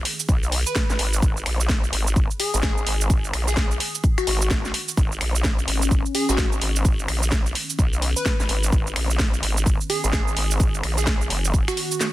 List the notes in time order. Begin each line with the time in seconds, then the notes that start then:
Already playing: D#3 B3 G#4
0.05 open hi-hat
0.20 shaker
0.29 B1, kick, shaker
0.43 shaker
0.52 open hi-hat
0.66 B4, shaker
0.76 kick, snare, shaker
0.90 G#1, snare, shaker
0.99 G#1, open hi-hat
1.13 shaker
1.22 G#1, kick, shaker
1.37 shaker
1.46 A#1, finger snap, open hi-hat
1.60 shaker
1.69 kick, snare, shaker
1.84 shaker
1.93 G#1, open hi-hat
2.07 shaker
2.16 kick, shaker
2.31 shaker
2.40 G#4, open hi-hat
2.54 G#1, shaker
2.63 G#4, kick, snare, shaker
2.78 shaker
2.87 G#1, open hi-hat
3.01 shaker
3.10 kick, shaker
3.24 shaker
3.33 A#1, finger snap, open hi-hat
3.48 G#4, shaker
3.57 G#4, kick, snare, shaker
3.71 shaker
3.80 open hi-hat
3.95 shaker
4.04 kick, shaker
4.18 F#4, finger snap, shaker
4.27 G#1, open hi-hat
4.42 shaker
4.51 G#1, kick, snare, shaker
4.65 snare, shaker
4.74 open hi-hat
4.88 shaker
4.97 G#1 C#4, kick, shaker
5.12 shaker
5.21 A#1, finger snap, open hi-hat
5.35 shaker
5.44 kick, snare, shaker
5.59 shaker
5.68 G#1, open hi-hat
5.82 shaker
5.91 kick, shaker
6.06 shaker
6.15 G#4, open hi-hat
6.29 G#1 F#4, shaker
6.38 F#4, kick, snare, shaker
6.52 shaker
6.61 G#1, open hi-hat
6.76 shaker
6.85 kick, shaker
6.99 shaker
7.08 A#1, finger snap, open hi-hat
7.23 shaker
7.32 kick, snare, shaker
7.46 shaker
7.55 open hi-hat
7.70 shaker
7.79 B1, kick, shaker
7.93 shaker
8.02 open hi-hat
8.16 B4, shaker
8.26 kick, snare, shaker
8.40 G#1, snare, shaker
8.49 G#1, open hi-hat
8.63 shaker
8.72 G#1, kick, shaker
8.87 shaker
8.96 A#1, finger snap, open hi-hat
9.10 shaker
9.19 kick, snare, shaker
9.34 shaker
9.43 G#1, open hi-hat
9.57 shaker
9.66 kick, shaker
9.81 shaker
9.90 G#4, open hi-hat
10.04 G#1, shaker
10.13 G#4, kick, snare, shaker
10.28 shaker
10.37 G#1, open hi-hat
10.51 shaker
10.60 kick, shaker
10.74 shaker
10.83 A#1, finger snap, open hi-hat
10.98 G#4, shaker
11.07 G#4, kick, snare, shaker
11.21 shaker
11.30 F#1, open hi-hat
11.45 shaker
11.54 kick, shaker
11.68 F#4, finger snap, shaker
11.77 open hi-hat
11.92 shaker
12.01 snare, shaker